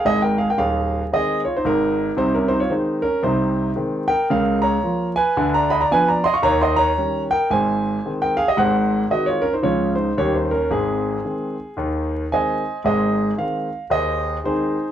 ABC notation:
X:1
M:4/4
L:1/16
Q:"Swing" 1/4=112
K:Ab
V:1 name="Grand piano"
[Ae] [Bg] [Af] [Bg] [Af]4 [Ae]2 [Fd] [Ec] [EB]4 | [Ec] [DB] [Ec] [Fd] [Ec]2 [DB]2 [Ec]4 z2 [Bg]2 | [Bf]2 [db]4 [_ca]3 [=db] [e=b] [d_b] [=Ba] [d_b] [e=c'] [f_d'] | [db] [ec'] [db]4 [Bg]2 [ca]4- [ca] [Bg] [Af] [Ge] |
[c_g]4 [_Ge] [Fd] [DB] [Ec] [Fd]2 [Ec]2 [=Gd] [Ec] [DB]2 | [CA]12 [cea]4 | [Ace]4 f4 [Ace]4 [EAc]4 |]
V:2 name="Grand piano" clef=bass
[A,,,A,,]4 [E,,,E,,]4 [E,A,C]4 [A,,,A,,]4 | [C,,C,]4 [E,A,C]4 [C,,C,]4 [E,A,C]4 | [D,,D,]4 [F,B,F]4 [=D,,=D,]4 [F,=B,=D]4 | [E,,E,]4 [E,G,D]4 [A,,,A,,]4 [E,A,C]4 |
[A,,,A,,]4 [E,A,C]4 [D,,D,F,A,D]4 [E,,E,G,D]4 | [A,,,A,,]4 [E,A,C]4 [E,,E,]4 [E,A,C]4 | [A,,,A,,]4 [E,A,C]4 [E,,E,]4 [E,A,C]4 |]